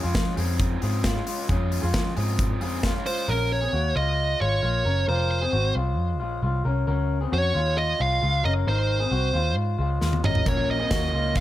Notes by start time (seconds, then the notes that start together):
0.03 F2 G#3 C#4 F4
0.15 F3, kick, snare, closed hi-hat
0.37 F2 F3 G#3 C4 C#4 F4 G#4, open hi-hat
0.60 kick, closed hi-hat
0.82 G#2 F3 G#3 C4 C#4 F4 G#4, open hi-hat
1.04 F3 G#3 C#4 F4, kick, snare, closed hi-hat
1.14 G#3 C#4 F4
1.26 G#3 F4, open hi-hat
1.49 F2 F3 G#3 C#4 F4 G#4, kick, closed hi-hat
1.72 open hi-hat
1.82 F2 G#3 C#4 F4
1.94 F3, kick, snare, closed hi-hat
2.15 G#2 F3 G#3 C4 C#4 F4 G#4, open hi-hat
2.39 kick, closed hi-hat
2.61 F2 F3 G#3 C4 C#4 F4 G#4, open hi-hat
2.83 F3 G#3 C#4 F4, kick, snare, closed hi-hat
2.95 G#3 C#4 F4
3.06 G#3 F4 C5, open hi-hat
3.28 A#1 C#4 A#4
3.52 C#5
3.62 C4 G#4
3.73 D#2 A#3 F#4
3.95 C#2 G#3 F4 D#5
4.40 G#1 G#3 F4 C#5
4.63 A#1 A#3 F4
4.85 F#1 C#4 A#4
5.08 F1 F4 A#4 C5
5.31 C5
5.41 C4 G#4
5.53 G#1 C4 F#4
5.75 C2 G#3 F4
5.98 F2
6.20 A#1 G#3 F4
6.42 C2 G#3 F4
6.65 C2 C#4 A#4
6.87 C#2 C#4 A#4
7.21 C4 G#4
7.32 F2 C#4 F#4 C#5
7.54 D#2 G#3 F4
7.78 D#5
7.99 C2 G#3 F4 F5
8.22 C#2 G#3 F4
8.44 F#1 C#4 A#4 D#5
8.67 G#1 D#4 A#4 C5
9.00 C4 G#4
9.11 C2 C4 F#4
9.33 D#2 G#3 F4
9.56 G#2
9.79 C#2 G#3 F4
10.01 D#2 G#3 F4, snare
10.13 high tom
10.24 G#1 C#4 A#4 D#5, mid tom
10.35 floor tom
10.46 A#1 A#2 F3 A#3 C#4 F4 A#4 C#5, kick, closed hi-hat
10.71 D#5
10.79 A#3 C4 C#4 F4 G#4
10.91 D#2 A#3 F#4, kick, snare, closed hi-hat
11.13 C#2 G#3 F4
11.35 F5, kick, closed hi-hat